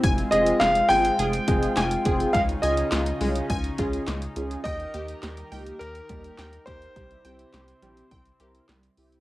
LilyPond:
<<
  \new Staff \with { instrumentName = "Grand piano" } { \time 4/4 \key f \minor \tempo 4 = 104 r8 ees''8 f''8 g''2~ g''8 | f''8 ees''2. r8 | ees''4. r8 bes'4. c''8~ | c''2. r4 | }
  \new Staff \with { instrumentName = "Synth pluck" } { \time 4/4 \key f \minor aes''8 aes'8 aes8 aes''8 aes'8 aes8 aes''8 aes'8 | aes8 aes''8 f'8 aes8 aes''8 f'8 aes8 r8 | g''8 g'8 g8 g''8 g'8 g8 g''8 g'8 | g8 g''8 g'8 g8 g''8 g'8 g8 r8 | }
  \new Staff \with { instrumentName = "Analog polysynth" } { \time 4/4 \key f \minor r8 <c' f' aes'>8 r8 <c' f' aes'>8 r8 <c' f' aes'>8 r8 <c' f' aes'>8 | r8 <des' f' aes'>8 r8 <des' f' aes'>8 r8 <des' f' aes'>8 r8 <des' f' aes'>8 | r8 <bes ees' g'>8 r8 <bes ees' g'>8 r8 <bes ees' g'>8 r8 <bes ees' bes'>8 | r8 <c' e' g'>8 r8 <c' e' g'>8 r8 <c' e' bes'>8 r8 <c' e' g'>8 | }
  \new Staff \with { instrumentName = "Analog synth pad" } { \time 4/4 \key f \minor << { f'1~ | f'1 | bes'1 | r1 | } \\ { <aes c'>1 | <des des' ees'>1 | <ees g'>1 | <c c' e'>1 | } >> }
  \new Staff \with { instrumentName = "Analog synth bass" } { \clef bass \time 4/4 \key f \minor f,,8 f,,8 f,,8 g,,8 f,,8 f,,8 f,,8 f,,8 | des,8 des,8 des,8 c,8 des,8 des,8 des,8 des,8 | ees,8 ees,8 ees,8 des,8 ees,8 ees,8 ees,8 ees,8 | c,8 c,8 c,8 bes,,8 c,8 c,8 c,8 c,8 | }
  \new DrumStaff \with { instrumentName = "Drums" } \drummode { \time 4/4 <hh bd>16 hh16 hh16 hh16 <hc hh sn>16 hh16 hho16 hh16 hh16 hh16 <hh bd>16 hh16 <hc hh sn>16 hh16 <hh bd>16 hh16 | <hh bd>16 hh16 hh16 hh16 <hc hh sn>16 hh16 hho16 hh16 <hh bd>16 hh16 <hh bd>16 hh16 <hc hh sn>16 hh16 hh16 hh16 | <hh bd>16 hh16 hh16 hh16 <hc hh sn>16 hh16 hho16 hh16 hh16 hh16 <hh bd>16 hh16 <hc hh sn>16 hh16 <hh bd>16 hh16 | <hh bd>16 hh16 hh16 hh16 <hc hh sn>16 hh16 hh16 hh16 <hh bd>16 hh16 hh16 hh16 <hc hh sn>16 hh16 hho16 hh16 | }
>>